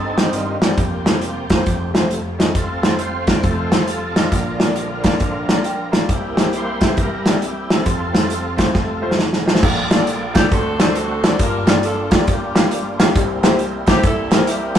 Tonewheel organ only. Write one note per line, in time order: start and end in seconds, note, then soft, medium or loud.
0.00 0.57 C4 medium
0.00 0.57 D#4 medium
0.00 0.18 A4 loud
0.17 0.34 G4 medium
0.32 0.59 G2 soft
0.32 0.59 D#3 soft
0.32 0.59 G3 medium
0.32 0.63 F4 medium
0.62 0.77 A#3 medium
0.62 1.91 C4 medium
0.62 1.91 G4 medium
0.77 1.47 F2 medium
0.77 1.47 C3 soft
0.77 1.47 A#3 medium
1.94 2.20 F2 soft
1.94 2.21 C3 medium
1.94 2.22 A3 medium
2.56 3.40 C4 medium
2.56 3.40 F4 medium
2.56 3.02 A4 medium
2.99 3.29 C5 medium
3.27 3.44 D5 medium
3.41 3.75 F2 medium
3.41 3.76 C3 soft
3.41 3.76 A3 medium
3.41 4.16 F4 medium
3.41 4.28 A4 medium
3.41 3.84 C5 medium
4.16 5.90 D4 medium
4.16 5.90 F4 medium
4.16 5.89 A#4 loud
4.31 5.18 A#2 soft
4.31 5.19 D3 soft
4.31 5.20 F3 medium
5.20 5.46 A#2 soft
5.20 5.46 D3 soft
5.20 5.47 F3 medium
6.10 6.82 A#3 medium
6.10 6.55 E4 medium
6.10 6.55 G4 medium
6.56 6.99 E4 medium
6.56 6.99 G4 medium
6.56 7.01 C5 loud
6.82 7.08 C3 soft
6.82 7.08 E3 soft
6.82 7.09 A#3 medium
7.00 7.83 E4 medium
7.00 7.41 G4 medium
7.00 7.45 A#4 medium
7.42 7.72 G4 medium
7.72 9.16 C4 medium
7.72 9.16 F4 medium
7.72 9.16 A4 medium
8.59 9.59 F2 soft
8.59 9.59 C3 soft
8.59 9.60 A3 soft
9.63 10.50 A#3 medium
9.63 10.50 F4 medium
9.63 10.50 A4 medium
9.63 10.51 D5 medium
10.51 11.39 A3 medium
10.51 13.13 D4 medium
10.51 11.39 F#4 medium
10.51 11.38 C5 medium
11.39 14.79 G3 medium
11.39 14.79 A#3 medium
11.39 13.13 F4 medium
13.17 14.79 C4 medium
13.17 14.79 E4 medium